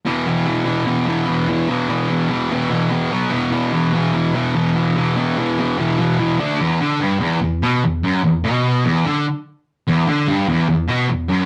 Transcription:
\new Staff \with { instrumentName = "Distorted electric guitar" } { \clef bass \time 4/4 \key d \mixolydian \tempo 4 = 146 <e, b, e>8 <e, b, e>8 <e, b, e>8 <e, b, e>8 <e, b, e>8 <e, b, e>8 <e, b, e>8 <e, b, e>8 | <e, b, e>8 <e, b, e>8 <e, b, e>8 <e, b, e>8 <e, b, e>8 <e, b, e>8 <e, b, e>8 <b, fis b>8 | <e, b, e>8 <e, b, e>8 <e, b, e>8 <e, b, e>8 <e, b, e>8 <e, b, e>8 <e, b, e>8 <e, b, e>8 | <e, b, e>8 <e, b, e>8 <e, b, e>8 <e, b, e>8 <e, b, e>8 <e, b, e>8 <e, b, e>8 <d a d'>8 |
e,8 d8 g,8 e,8 e,8 b,8 e,8 fis,8 | e,8 b,4 e,8 d8 r4. | e,8 d8 g,8 e,8 e,8 b,8 e,8 fis,8 | }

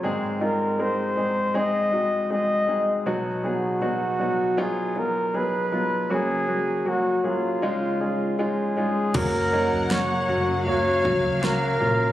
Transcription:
<<
  \new Staff \with { instrumentName = "Violin section" } { \time 4/4 \key fis \major \tempo 4 = 79 r1 | r1 | r1 | fis''2 eis''2 | }
  \new Staff \with { instrumentName = "Flugelhorn" } { \time 4/4 \key fis \major r8 ais'8 bis'4 dis''4 dis''4 | r8 fis'4. gis'8 ais'8 b'4 | gis'4 fis'8 eis'4. gis'4 | ais'4 cis''4 cis''4 ais'4 | }
  \new Staff \with { instrumentName = "Grand piano" } { \time 4/4 \key fis \major <gis bis dis' gis'>8 <gis bis dis' eis'>8 <gis bis dis' ais'>8 <gis bis dis' gis'>8 <gis bis dis' gis'>8 <gis bis dis' fis'>8 <gis bis dis' gis'>8 <gis bis dis' gis'>8 | <fis b dis' fis'>8 <fis b dis' gis'>8 <fis b dis' fis'>8 <fis b dis' fis'>8 <fis b dis' eis'>8 <fis b dis' eis'>8 <fis b dis' gis'>8 <fis b dis' eis'>8 | <fis ais cis' fis'>8 <fis ais cis' fis'>8 <fis ais cis' fis'>8 <fis ais cis' gis'>8 <gis cis' dis' eis'>8 <gis cis' dis' gis'>8 <gis cis' dis' eis'>8 <gis cis' dis' eis'>8 | <fis ais cis' fis'>8 <fis ais cis' dis'>8 <fis ais cis' dis'>8 <fis ais cis' fis'>8 <fis ais cis' fis'>8 <fis ais cis' fis'>8 <fis ais cis' fis'>8 <fis ais cis' eis'>8 | }
  \new Staff \with { instrumentName = "Grand piano" } { \clef bass \time 4/4 \key fis \major <gis, dis>1 | b,1 | cis2 cis2 | cis4. r2 r8 | }
  \new Staff \with { instrumentName = "String section" } { \clef bass \time 4/4 \key fis \major r1 | r1 | r1 | <cis fis ais>1 | }
  \new Staff \with { instrumentName = "Fingered electric bass" } { \clef bass \time 4/4 \key fis \major r1 | r1 | r1 | fis,,4. fis,,4 cis,4 ais,,8 | }
  \new DrumStaff \with { instrumentName = "Drums" } \drummode { \time 4/4 r4 r4 r4 r4 | r4 r4 r4 r4 | r4 r4 r4 r4 | <cymc bd tomfh>8. tomfh16 sn4 tomfh8 bd16 tomfh16 sn4 | }
>>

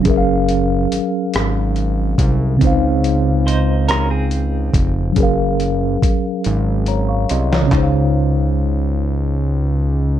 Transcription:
<<
  \new Staff \with { instrumentName = "Tine electric piano" } { \time 6/8 \key des \major \tempo 4. = 47 << { r2. | r2. | r2 <des'' bes''>16 <f'' des'''>16 <ees'' c'''>16 <des'' bes''>16~ | <des'' bes''>16 r2 r8. | } \\ { <ges des' aes' bes' fes'' f''>2. | <des c' ees' c'' f''>2. | <ges des' aes' bes' f''>2. | <des des' ees' c'' f''>2. | } >> }
  \new Staff \with { instrumentName = "Clean electric guitar" } { \time 6/8 \key des \major r2. | r4 <ees' c''>8 <des' bes'>16 <c' aes'>4~ <c' aes'>16 | r2. | r2. | }
  \new Staff \with { instrumentName = "Analog synth bass" } { \clef bass \time 6/8 \key des \major ges,,4 aes,,8 aes,,4 c,8 | des,2~ des,8 f,,8 | ges,,4 aes,,8 aes,,4 c,8 | des,2. | }
  \new DrumStaff \with { instrumentName = "Drums" } \drummode { \time 6/8 <hh bd>8 hh8 hh8 <hh ss>8 hh8 <hh bd>8 | <hh bd>8 hh8 hh8 <hh ss>8 hh8 <hh bd>8 | <hh bd>8 hh8 <hh bd>8 hh8 hh8 hh16 sn16 | <hc bd>4. r4. | }
>>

